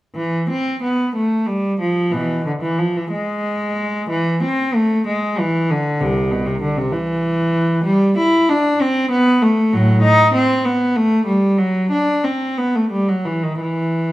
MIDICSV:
0, 0, Header, 1, 2, 480
1, 0, Start_track
1, 0, Tempo, 654308
1, 112, Time_signature, 6, 3, 24, 8
1, 3949, Tempo, 621118
1, 8749, Tempo, 667408
1, 9709, Tempo, 705882
1, 10520, End_track
2, 0, Start_track
2, 0, Title_t, "Cello"
2, 0, Program_c, 0, 42
2, 115, Note_on_c, 0, 52, 56
2, 341, Note_off_c, 0, 52, 0
2, 366, Note_on_c, 0, 60, 58
2, 595, Note_off_c, 0, 60, 0
2, 610, Note_on_c, 0, 59, 56
2, 833, Note_off_c, 0, 59, 0
2, 845, Note_on_c, 0, 57, 53
2, 1070, Note_off_c, 0, 57, 0
2, 1072, Note_on_c, 0, 55, 61
2, 1311, Note_off_c, 0, 55, 0
2, 1322, Note_on_c, 0, 53, 52
2, 1553, Note_off_c, 0, 53, 0
2, 1555, Note_on_c, 0, 47, 45
2, 1555, Note_on_c, 0, 52, 55
2, 1777, Note_off_c, 0, 47, 0
2, 1794, Note_off_c, 0, 52, 0
2, 1803, Note_on_c, 0, 50, 56
2, 1849, Note_off_c, 0, 50, 0
2, 1922, Note_on_c, 0, 52, 55
2, 2037, Note_off_c, 0, 52, 0
2, 2046, Note_on_c, 0, 53, 55
2, 2163, Note_off_c, 0, 53, 0
2, 2179, Note_on_c, 0, 52, 55
2, 2288, Note_on_c, 0, 56, 63
2, 2292, Note_off_c, 0, 52, 0
2, 2993, Note_off_c, 0, 56, 0
2, 3005, Note_on_c, 0, 52, 63
2, 3239, Note_off_c, 0, 52, 0
2, 3253, Note_on_c, 0, 60, 63
2, 3481, Note_off_c, 0, 60, 0
2, 3486, Note_on_c, 0, 57, 66
2, 3719, Note_off_c, 0, 57, 0
2, 3722, Note_on_c, 0, 56, 64
2, 3946, Note_off_c, 0, 56, 0
2, 3955, Note_on_c, 0, 52, 67
2, 4192, Note_off_c, 0, 52, 0
2, 4198, Note_on_c, 0, 50, 66
2, 4430, Note_off_c, 0, 50, 0
2, 4430, Note_on_c, 0, 48, 64
2, 4434, Note_on_c, 0, 36, 53
2, 4649, Note_off_c, 0, 36, 0
2, 4664, Note_off_c, 0, 48, 0
2, 4669, Note_on_c, 0, 47, 62
2, 4783, Note_off_c, 0, 47, 0
2, 4783, Note_on_c, 0, 48, 62
2, 4900, Note_off_c, 0, 48, 0
2, 4904, Note_on_c, 0, 50, 61
2, 5018, Note_off_c, 0, 50, 0
2, 5026, Note_on_c, 0, 48, 64
2, 5134, Note_on_c, 0, 52, 69
2, 5142, Note_off_c, 0, 48, 0
2, 5850, Note_off_c, 0, 52, 0
2, 5853, Note_on_c, 0, 55, 76
2, 6088, Note_off_c, 0, 55, 0
2, 6109, Note_on_c, 0, 64, 76
2, 6337, Note_off_c, 0, 64, 0
2, 6349, Note_on_c, 0, 62, 73
2, 6582, Note_off_c, 0, 62, 0
2, 6599, Note_on_c, 0, 60, 75
2, 6826, Note_off_c, 0, 60, 0
2, 6829, Note_on_c, 0, 59, 83
2, 7057, Note_off_c, 0, 59, 0
2, 7072, Note_on_c, 0, 57, 73
2, 7306, Note_off_c, 0, 57, 0
2, 7307, Note_on_c, 0, 54, 76
2, 7308, Note_on_c, 0, 45, 62
2, 7528, Note_off_c, 0, 45, 0
2, 7535, Note_on_c, 0, 63, 77
2, 7545, Note_off_c, 0, 54, 0
2, 7773, Note_off_c, 0, 63, 0
2, 7784, Note_on_c, 0, 60, 72
2, 8018, Note_off_c, 0, 60, 0
2, 8021, Note_on_c, 0, 59, 64
2, 8258, Note_on_c, 0, 57, 78
2, 8263, Note_off_c, 0, 59, 0
2, 8490, Note_on_c, 0, 55, 67
2, 8501, Note_off_c, 0, 57, 0
2, 8735, Note_off_c, 0, 55, 0
2, 8739, Note_on_c, 0, 54, 69
2, 8975, Note_on_c, 0, 62, 66
2, 8976, Note_off_c, 0, 54, 0
2, 9212, Note_off_c, 0, 62, 0
2, 9214, Note_on_c, 0, 60, 57
2, 9456, Note_on_c, 0, 59, 59
2, 9459, Note_off_c, 0, 60, 0
2, 9581, Note_off_c, 0, 59, 0
2, 9586, Note_on_c, 0, 57, 52
2, 9692, Note_on_c, 0, 55, 60
2, 9708, Note_off_c, 0, 57, 0
2, 9814, Note_on_c, 0, 54, 53
2, 9815, Note_off_c, 0, 55, 0
2, 9926, Note_on_c, 0, 52, 51
2, 9938, Note_off_c, 0, 54, 0
2, 10049, Note_on_c, 0, 51, 48
2, 10054, Note_off_c, 0, 52, 0
2, 10170, Note_on_c, 0, 52, 57
2, 10176, Note_off_c, 0, 51, 0
2, 10520, Note_off_c, 0, 52, 0
2, 10520, End_track
0, 0, End_of_file